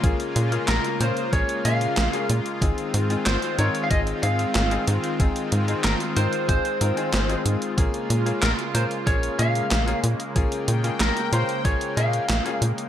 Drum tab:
HH |xxxxxxxxxxxxxxxx|xxxxxxxxxxxxxxxx|xxxxxxxxxxxxxxxx|xxxxxxxxxxxxxxxx|
CP |----x-------x---|----x-------x---|----x-------x---|----x-------x---|
SD |----o-------o---|----o-------o---|----o-------o---|----o-------o---|
BD |o-------o-------|o-------o-------|o-------o-------|o-------o-------|

HH |xxxxxxxxxxxxxxxx|
CP |----x-------x---|
SD |----o-------o---|
BD |o-------o-------|